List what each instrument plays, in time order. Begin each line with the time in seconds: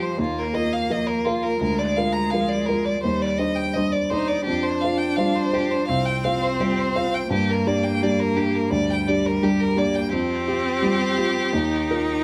Already playing: grand piano F2 G3 F4 G4, cello F3
0.02 violin C5
0.18 grand piano D#2, cello A#3, violin F4
0.38 violin A#4
0.54 grand piano F4 A#4, violin D#5
0.73 violin F5
0.90 grand piano F3 F4 A#4, violin D#5
1.07 violin A#4
1.25 violin F4, grand piano F4 A#4
1.43 violin A#4
1.61 grand piano D2, cello G#3, violin A#4
1.79 violin D5
1.96 grand piano F4 A#4, violin F5
2.13 violin A#5
2.31 grand piano F3 F4 A#4, violin F5
2.49 violin D5
2.66 grand piano F4 A#4, violin A#4
2.85 violin D5
3.02 grand piano D#2, cello G3, violin C5
3.22 violin D5
3.38 grand piano D4 C5, violin D#5
3.56 violin G5
3.74 grand piano G3 D4 C5, violin D#5
3.92 violin D5
4.10 cello D#4, violin C5, grand piano C5 D5
4.28 violin D5
4.45 grand piano F2, cello D4, violin G4
4.63 violin C5
4.81 grand piano F4 C5, violin F5
4.98 violin G5
5.16 grand piano G3 F4 C5, violin F5
5.36 violin C5
5.53 grand piano F4 C5, violin G4
5.71 violin C5
5.87 grand piano C2, cello C4, violin F5
6.06 violin G5
6.24 grand piano F4 C5, violin F5
6.43 violin C5
6.60 grand piano G3 F4 C5, violin G4
6.79 violin C5
6.95 grand piano F4 C5, violin F5
7.14 violin G5
7.28 grand piano G2, cello A#3, violin G4
7.49 violin A#4
7.67 grand piano D4 G4, violin D5
7.83 violin G5
8.02 grand piano G3 D4 G4, violin D5
8.20 violin A#4
8.35 grand piano D4 G4, violin G4
8.55 violin A#4
8.69 grand piano D2, cello G3, violin D5
8.90 violin G5
9.08 grand piano D4 G4, violin D5
9.26 violin A#4
9.43 grand piano G3 D4 G4, violin G4
9.60 violin A#4
9.76 cello A#3, grand piano D4 G4, violin D5
9.94 violin G5
10.11 grand piano F2, cello C4, violin G4
10.47 grand piano F4 G4
10.82 grand piano G3 F4 G4
11.18 grand piano F4 G4
11.53 grand piano D#2, cello D#4
11.90 grand piano F4 A#4